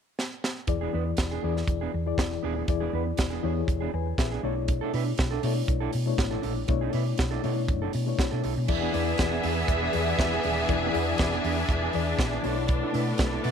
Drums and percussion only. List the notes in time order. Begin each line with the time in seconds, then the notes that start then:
0.19 snare
0.44 snare
0.67 kick, closed hi-hat
1.17 kick, snare, closed hi-hat
1.57 snare
1.68 kick, closed hi-hat
2.18 kick, snare, closed hi-hat
2.68 kick, closed hi-hat
3.17 kick, snare, closed hi-hat
3.68 kick, closed hi-hat
4.18 kick, snare, closed hi-hat
4.68 kick, closed hi-hat
4.94 open hi-hat
5.18 kick, snare, closed hi-hat
5.43 open hi-hat
5.68 kick, closed hi-hat
5.93 open hi-hat
6.18 kick, snare, closed hi-hat
6.43 open hi-hat
6.68 kick, closed hi-hat
6.93 open hi-hat
7.18 kick, snare, closed hi-hat
7.44 open hi-hat
7.68 kick, closed hi-hat
7.93 open hi-hat
8.19 kick, snare, closed hi-hat
8.44 open hi-hat
8.68 kick, crash
8.94 open hi-hat
9.18 kick, snare, closed hi-hat
9.43 open hi-hat
9.68 kick, closed hi-hat
9.93 open hi-hat
10.19 kick, snare, closed hi-hat
10.43 open hi-hat
10.69 kick, closed hi-hat
10.94 open hi-hat
11.18 kick, snare, closed hi-hat
11.44 open hi-hat
11.69 kick, closed hi-hat
11.93 open hi-hat
12.19 kick, snare, closed hi-hat
12.44 open hi-hat
12.68 kick, closed hi-hat
12.94 open hi-hat
13.18 kick, snare, closed hi-hat
13.44 open hi-hat